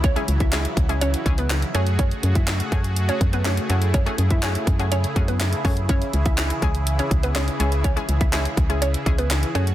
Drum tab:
HH |xxxxxxxxxxxxxxxx|xxxxxxxxxxxxxxxx|xxxxxxxxxxxxxxox|xxxxxxxxxxxxxxxx|
CP |----x-------x---|----x-------x---|----x-------x---|----x-------x---|
SD |----o-------o---|----o-------o---|----o-------o---|----o-------o---|
BD |o--o--o---o-----|o--o--o---o-----|o--o--o---o---o-|o--o--o---o-----|

HH |xxxxxxxxxxxxxxxx|
CP |----x-------x---|
SD |----o-------o---|
BD |o--o--o---o-----|